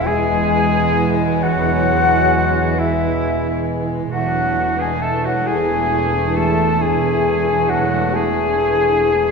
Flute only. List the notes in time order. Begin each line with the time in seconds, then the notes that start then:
0.06 G#5
1.43 F#5
2.80 E5
4.13 F#5
4.82 G#5
5.02 A5
5.26 F#5
5.47 G#5
6.36 A5
6.81 G#5
7.69 F#5
8.14 G#5